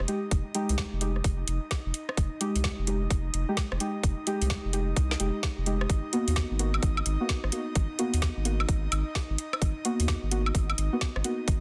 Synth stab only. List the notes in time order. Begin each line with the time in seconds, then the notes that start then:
0.08 G#3 D#4 G4
0.55 G#3 D#4 G4
1.01 G#3 D#4 G4
2.41 G#3 D#4 G4
2.87 G#3 D#4 G4
3.49 G#3 D#4 G4
3.80 G#3 D#4 G4
4.27 G#3 D#4 G4
4.73 G#3 D#4 G4
5.20 G#3 D#4 G4
5.66 G#3 D#4 G4
6.13 A#3 B3 F#4
6.59 A#3 B3 F#4
7.20 A#3 B3 F#4
7.52 A#3 B3 F#4
7.99 A#3 B3 F#4
8.45 A#3 B3 F#4
9.85 A#3 B3 F#4
10.31 A#3 B3 F#4
10.93 A#3 B3 F#4
11.24 A#3 B3 F#4